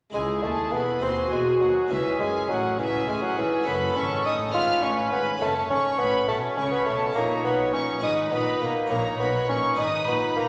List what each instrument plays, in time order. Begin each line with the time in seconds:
0.10 cello section C#2, harpsichord G#3 E4 G#4, bassoon G#3, violin section G#5
0.14 double bass section C#2, harpsichord C#2, viola section E4, violin section G#4
0.43 cello section D#2, double bass section D#2, harpsichord D#2, bassoon A3, violin section A5
0.72 double bass section E1, cello section E2, harpsichord E2, bassoon B3, violin section B5
0.99 cello section D#2, double bass section D#2, harpsichord G#3 F#4 G#4, bassoon C4, violin section C6
1.03 harpsichord D#2, viola section F#4, violin section G#4
1.31 double bass section E1, cello section E2, harpsichord E2, bassoon G#3, violin section G#5
1.61 double bass section D#2, cello section D#2, harpsichord D#2, bassoon F#3, violin section F#5
1.86 harpsichord G#3 C#4 C#5
1.91 cello section C#2, double bass section C#2, harpsichord C#2, bassoon E3, viola section C#4, violin section G#4 E5
2.20 double bass section F#1, cello section F#2, harpsichord F#2, bassoon G#3, violin section G#5
2.49 double bass section A1, cello section A2, harpsichord A2, bassoon F#3, violin section F#5
2.79 double bass section C#2, cello section C#3, harpsichord C#3, bassoon E3, viola section C#4, violin section G#4 E5
3.07 double bass section A1, cello section A2, harpsichord A2, bassoon G#3, violin section G#5
3.22 bassoon F#3, violin section F#5
3.37 double bass section G#1, harpsichord G#2, cello section G#2, bassoon E3, violin section E5
3.63 harpsichord A3 C#4 C#5, bassoon B3, violin section B5
3.67 double bass section F#1, cello section F#2, harpsichord F#2, viola section C#4, violin section A4
3.96 double bass section G#1, harpsichord G#2, cello section G#2, bassoon C#4, violin section C#6
4.24 double bass section A1, harpsichord A2, cello section A2, bassoon D#4, violin section D#6
4.48 harpsichord G#3 B3 C#4
4.53 double bass section G#1, cello section G#2, harpsichord G#2 C#5, viola section C#4, bassoon F4, violin section B4 F6
4.82 double bass section A1, harpsichord A2, cello section A2, bassoon C#4, violin section C#6
5.12 double bass section G#1, cello section G#2, harpsichord G#2, bassoon B3, violin section B5
5.37 double bass section F#1, harpsichord A3 C#4 C#5
5.41 cello section F#2, harpsichord F#2, bassoon A3, viola section C#4, violin section C#5 A5
5.70 double bass section G#1, cello section G#2, harpsichord G#2, bassoon C#4, violin section C#6
5.99 double bass section A1, cello section A2, harpsichord A2, bassoon B3, violin section B5
6.28 double bass section B1, cello section B2, harpsichord B2, bassoon A3, viola section C#4, violin section C#5 A5
6.57 double bass section C#2, cello section C#3, harpsichord C#3, bassoon C#4, violin section C#6
6.71 bassoon B3, violin section B5
6.86 double bass section B1, cello section B2, harpsichord B2, bassoon A3, violin section A5
7.12 double bass section A#1, harpsichord A#2 D#4 C#5, cello section A#2, bassoon A#3, viola section D#4, violin section C#5 A#5
7.44 double bass section B1, cello section B2, harpsichord B2, bassoon B3, violin section B5
7.73 double bass section A#1, cello section A#2, harpsichord A#2, bassoon C#4, violin section C#6
7.98 harpsichord G#3 D#4 B4
8.02 double bass section G#1, cello section G#2, harpsichord G#2, viola section D#4, bassoon D#4, violin section B4 D#6
8.31 double bass section A#1, harpsichord A#2, cello section A#2, bassoon B3, violin section B5
8.61 double bass section B1, harpsichord B2, cello section B2, bassoon A#3, violin section A#5
8.86 double bass section A#1, harpsichord A#2 D#4 C#5, cello section A#2, bassoon A#3, violin section C#5
8.90 viola section D#4, violin section A#5
9.19 double bass section B1, harpsichord B2, cello section B2, bassoon B3, violin section B5
9.49 double bass section A#1, harpsichord A#2, cello section A#2, bassoon C#4, violin section C#6
9.73 harpsichord G#3 D#4 B4
9.78 double bass section G#1, harpsichord G#2, cello section G#2, viola section D#4, bassoon D#4, violin section B4 D#6
10.07 double bass section A#1, cello section A#2, harpsichord A#2, bassoon B3, violin section B5
10.36 double bass section B1, cello section B2, harpsichord B2, bassoon A#3, violin section A#5